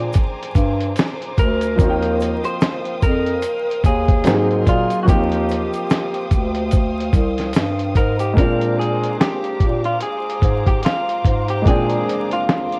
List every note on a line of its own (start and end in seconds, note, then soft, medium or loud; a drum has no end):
0.00 0.11 A#2 medium
0.00 1.74 F3 medium
0.00 1.75 A#3 medium
0.00 1.75 C4 medium
0.00 1.76 D4 medium
0.00 1.81 G4 medium
0.00 1.80 G#4 medium
0.00 4.22 C5 medium
0.00 1.75 G#5 medium
0.00 1.75 A#5 medium
0.00 1.75 D6 medium
0.13 kick medium
0.13 closed hi-hat medium
0.13 shaker medium
0.43 closed hi-hat soft
0.55 0.93 G2 loud
0.55 kick medium
0.55 closed hi-hat medium
0.55 shaker medium
0.81 closed hi-hat soft
0.96 snare loud
0.96 closed hi-hat medium
0.96 shaker medium
1.22 closed hi-hat soft
1.38 1.75 D2 loud
1.38 2.45 A#4 loud
1.38 kick medium
1.38 closed hi-hat medium
1.38 shaker soft
1.61 closed hi-hat medium
1.61 shaker soft
1.76 2.40 D#2 medium
1.76 4.20 F3 medium
1.76 4.21 A#3 medium
1.76 4.22 C4 medium
1.76 4.23 F5 medium
1.76 4.23 G5 medium
1.76 4.23 D#6 medium
1.76 kick loud
1.76 closed hi-hat medium
1.76 shaker medium
1.81 4.23 D#4 medium
1.81 1.89 F#4 medium
1.90 4.27 G5 medium
2.03 closed hi-hat soft
2.20 closed hi-hat medium
2.20 shaker soft
2.44 3.03 C5 loud
2.44 closed hi-hat medium
2.44 shaker soft
2.61 snare loud
2.61 closed hi-hat medium
2.61 shaker medium
2.85 closed hi-hat soft
3.02 3.40 F2 loud
3.02 3.86 A#4 loud
3.02 kick medium
3.02 closed hi-hat medium
3.02 shaker soft
3.26 closed hi-hat soft
3.42 closed hi-hat medium
3.42 shaker medium
3.71 closed hi-hat soft
3.84 4.22 D#2 loud
3.84 4.68 G#4 medium
3.84 kick medium
3.84 closed hi-hat medium
3.84 shaker medium
4.09 kick medium
4.09 closed hi-hat soft
4.24 4.64 G#2 loud
4.24 5.07 F#3 medium
4.24 5.05 A#3 medium
4.24 5.07 C4 medium
4.24 5.08 D#4 medium
4.24 4.34 G4 medium
4.24 5.08 A#4 medium
4.24 5.07 D#5 medium
4.24 5.08 G#5 medium
4.24 5.08 C6 medium
4.24 snare loud
4.24 closed hi-hat medium
4.24 shaker medium
4.34 5.12 G#4 medium
4.51 closed hi-hat soft
4.66 4.89 A#2 loud
4.66 5.03 F4 medium
4.66 kick medium
4.66 closed hi-hat medium
4.66 shaker soft
4.90 closed hi-hat medium
4.90 shaker soft
5.03 8.31 F3 medium
5.03 8.32 A#3 medium
5.03 5.08 F#4 medium
5.08 5.69 D#2 medium
5.08 8.33 C4 medium
5.08 8.34 D#4 medium
5.08 6.69 G4 medium
5.08 8.34 G4 medium
5.08 8.33 C5 medium
5.08 8.34 F5 medium
5.08 8.34 G5 medium
5.08 8.34 D#6 medium
5.08 kick loud
5.08 closed hi-hat medium
5.08 shaker medium
5.32 closed hi-hat soft
5.49 closed hi-hat medium
5.49 shaker soft
5.73 closed hi-hat soft
5.73 shaker soft
5.90 snare loud
5.90 closed hi-hat medium
5.90 shaker medium
6.14 closed hi-hat soft
6.31 7.10 D2 medium
6.31 kick medium
6.31 closed hi-hat medium
6.31 shaker soft
6.54 closed hi-hat soft
6.71 kick medium
6.71 closed hi-hat medium
6.71 shaker medium
7.00 closed hi-hat medium
7.13 7.51 C2 loud
7.13 kick medium
7.13 closed hi-hat medium
7.13 shaker medium
7.38 snare soft
7.38 closed hi-hat soft
7.53 7.92 G2 medium
7.53 snare loud
7.53 closed hi-hat medium
7.53 shaker medium
7.79 closed hi-hat soft
7.95 8.33 G#2 loud
7.95 8.20 A#4 medium
7.95 kick medium
7.95 closed hi-hat medium
7.95 shaker soft
8.19 8.38 G4 medium
8.19 closed hi-hat medium
8.19 shaker soft
8.33 9.15 A#2 loud
8.33 11.60 G#3 medium
8.33 11.61 A#3 medium
8.33 11.61 C4 medium
8.33 12.79 C5 medium
8.33 12.79 F5 medium
8.33 12.79 A#5 medium
8.33 12.79 D6 medium
8.33 kick loud
8.38 11.62 D4 medium
8.38 11.63 F4 medium
8.38 8.79 A#4 medium
8.38 closed hi-hat medium
8.61 closed hi-hat soft
8.79 9.20 G#4 medium
8.79 closed hi-hat medium
9.03 closed hi-hat soft
9.20 9.85 G4 medium
9.20 snare loud
9.20 closed hi-hat medium
9.44 closed hi-hat soft
9.60 9.98 A#2 medium
9.60 kick medium
9.60 closed hi-hat medium
9.84 10.02 F4 medium
9.84 closed hi-hat soft
10.00 10.67 G#4 medium
10.00 closed hi-hat medium
10.30 closed hi-hat soft
10.42 10.80 G#2 medium
10.42 kick medium
10.42 closed hi-hat medium
10.66 10.84 G4 medium
10.66 kick medium
10.66 closed hi-hat soft
10.83 11.50 F4 medium
10.83 snare medium
10.83 closed hi-hat medium
11.09 closed hi-hat soft
11.24 11.62 G#2 medium
11.24 kick medium
11.24 closed hi-hat medium
11.48 11.65 G4 medium
11.48 closed hi-hat medium
11.62 12.79 G#3 medium
11.62 12.79 A#3 medium
11.62 12.79 C4 medium
11.62 kick loud
11.66 12.03 A#2 loud
11.66 12.79 D4 medium
11.66 12.33 G#4 medium
11.66 12.79 G5 medium
11.66 closed hi-hat medium
11.89 closed hi-hat soft
12.09 closed hi-hat medium
12.31 12.79 F4 medium
12.31 closed hi-hat soft
12.49 snare loud
12.49 closed hi-hat medium
12.73 closed hi-hat soft